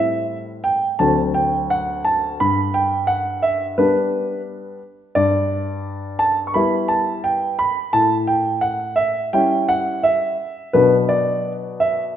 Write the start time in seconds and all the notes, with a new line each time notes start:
Already playing: A2 G3 C4 E4 E5
0.64 G5
0.99 D2 F#3 C4 D4 A5
1.34 G5
1.70 F#5
2.05 A5
2.40 G2 B5
2.74 G5
3.07 F#5
3.42 E5
3.78 G3 B3 D4 B4
5.15 G2 D5
6.19 A5
6.47 C#6
6.54 G3 B3 E4 B5
6.88 A5
7.24 G5
7.59 B5
7.93 A2 A5
8.27 G5
8.61 F#5
8.96 E5
9.33 G3 C#4 E4 G5
9.69 F#5
10.03 E5
10.73 B2 F#3 B3 D4 B4
11.09 D5
11.80 E5